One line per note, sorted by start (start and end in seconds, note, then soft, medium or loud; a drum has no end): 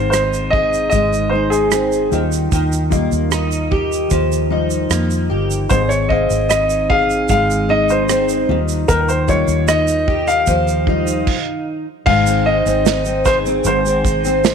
0.00 0.89 G#1 medium
0.00 2.20 G#2 medium
0.00 1.25 D#3 medium
0.00 1.32 G#3 medium
0.00 1.71 C4 medium
0.00 0.13 D#4 soft
0.00 1.33 D#4 medium
0.00 1.34 C5 medium
0.10 1.32 D#4 medium
0.10 0.53 C5 medium
0.10 cross-stick medium
0.10 shaker medium
0.33 shaker medium
0.50 2.20 G#4 medium
0.50 0.88 D#5 medium
0.50 kick medium
0.73 shaker soft
0.89 2.08 G#1 medium
0.89 2.20 G#3 medium
0.89 1.32 D#5 medium
0.89 kick medium
0.89 shaker medium
1.13 shaker soft
1.29 2.12 G#3 medium
1.29 2.12 D#4 medium
1.29 3.31 D#4 medium
1.29 1.52 C5 medium
1.34 2.13 C5 medium
1.50 2.07 G#4 medium
1.50 shaker soft
1.72 2.20 C4 medium
1.72 cross-stick medium
1.72 shaker medium
1.92 shaker soft
2.11 2.49 D#2 medium
2.11 2.52 D#3 medium
2.11 2.75 G3 medium
2.11 2.76 F4 medium
2.11 2.76 D#5 medium
2.11 shaker soft
2.32 shaker medium
2.52 3.08 D#2 medium
2.52 6.03 D#3 medium
2.52 kick loud
2.52 shaker medium
2.72 shaker medium
2.90 4.08 G3 medium
2.90 4.89 A#3 medium
2.90 4.08 F4 medium
2.90 4.09 D#5 medium
2.90 kick medium
2.90 shaker soft
3.12 4.07 D#2 medium
3.12 shaker soft
3.31 4.50 D#4 medium
3.31 cross-stick medium
3.31 shaker medium
3.52 shaker medium
3.71 5.29 G4 medium
3.71 kick medium
3.92 shaker soft
4.11 4.87 D#2 medium
4.11 5.78 F3 medium
4.11 kick medium
4.11 shaker medium
4.32 shaker soft
4.50 5.38 G3 medium
4.50 6.49 D#4 medium
4.50 5.39 F4 medium
4.50 5.39 D#5 medium
4.71 shaker soft
4.90 5.27 F2 medium
4.90 5.78 A#3 medium
4.90 cross-stick medium
4.90 shaker medium
5.11 shaker soft
5.30 5.67 G1 medium
5.30 5.78 G4 medium
5.51 shaker medium
5.69 6.26 G#1 medium
5.69 8.56 G#2 medium
5.69 6.00 C4 medium
5.69 6.00 G#4 medium
5.69 5.90 C5 medium
5.69 6.00 D#5 medium
5.69 kick loud
5.69 shaker medium
5.89 6.08 C#5 medium
5.89 shaker soft
6.09 7.26 C4 medium
6.09 8.08 C4 medium
6.09 7.27 G#4 medium
6.09 6.48 D#5 medium
6.09 7.27 F5 medium
6.09 kick medium
6.30 7.26 G#1 medium
6.30 shaker soft
6.49 7.69 D#4 medium
6.49 6.87 D#5 medium
6.49 cross-stick medium
6.49 shaker medium
6.70 shaker medium
6.90 8.57 G#4 medium
6.90 7.29 F5 medium
6.90 kick medium
7.10 shaker soft
7.29 8.45 G#1 medium
7.29 8.57 G#3 medium
7.29 7.71 F5 medium
7.29 kick medium
7.29 shaker medium
7.51 shaker soft
7.68 8.48 C4 medium
7.68 9.67 D#4 medium
7.68 8.49 G#4 medium
7.68 7.90 D#5 medium
7.68 8.49 D#5 medium
7.89 8.45 C5 medium
7.89 shaker soft
8.09 8.57 C4 medium
8.09 cross-stick loud
8.09 shaker medium
8.29 shaker soft
8.49 8.86 D#2 medium
8.49 8.88 D#3 medium
8.49 9.12 G3 medium
8.49 9.13 F4 medium
8.49 9.13 D#5 medium
8.69 shaker medium
8.88 9.44 D#2 medium
8.88 11.85 D#3 medium
8.88 9.09 A#4 medium
8.88 kick loud
8.88 shaker medium
9.09 9.29 C5 medium
9.09 shaker soft
9.28 10.45 G3 medium
9.28 11.35 A#3 medium
9.28 10.45 F4 medium
9.28 9.70 C#5 medium
9.28 10.46 D#5 medium
9.28 kick medium
9.28 shaker soft
9.48 10.43 D#2 medium
9.48 shaker soft
9.68 10.87 D#4 medium
9.68 10.29 D#5 medium
9.68 cross-stick loud
9.68 shaker medium
9.88 shaker medium
10.08 11.35 G4 medium
10.08 kick medium
10.28 11.63 F5 medium
10.28 shaker soft
10.47 11.23 D#2 medium
10.47 11.35 F3 medium
10.47 kick medium
10.47 shaker medium
10.68 shaker soft
10.87 11.27 G3 medium
10.87 11.85 D#4 medium
10.87 11.27 F4 medium
10.87 11.28 D#5 medium
10.87 kick medium
11.07 shaker soft
11.27 kick loud
11.27 crash medium
12.06 12.62 G#1 medium
12.06 13.64 G#2 medium
12.06 13.23 G#3 medium
12.06 13.23 D#4 medium
12.06 13.24 C5 medium
12.06 12.43 F5 loud
12.06 kick loud
12.06 crash medium
12.27 12.65 C4 medium
12.27 shaker medium
12.46 12.86 D#4 medium
12.46 13.28 D#5 medium
12.66 13.61 G#1 medium
12.66 13.05 C4 medium
12.66 shaker soft
12.86 14.04 D#4 medium
12.86 snare medium
12.86 shaker medium
13.05 13.44 C4 medium
13.05 shaker medium
13.25 14.55 G#4 medium
13.25 13.34 C5 medium
13.25 kick medium
13.25 snare soft
13.25 shaker medium
13.45 13.84 C4 medium
13.45 shaker soft
13.64 14.55 G#1 loud
13.64 14.55 G#2 medium
13.64 14.55 C5 medium
13.64 shaker medium
13.85 14.24 C4 medium
13.85 shaker soft
14.04 14.43 D#4 medium
14.04 kick medium
14.04 shaker soft
14.25 14.55 C4 medium
14.25 shaker soft
14.44 14.55 D#4 medium
14.44 snare loud
14.44 shaker medium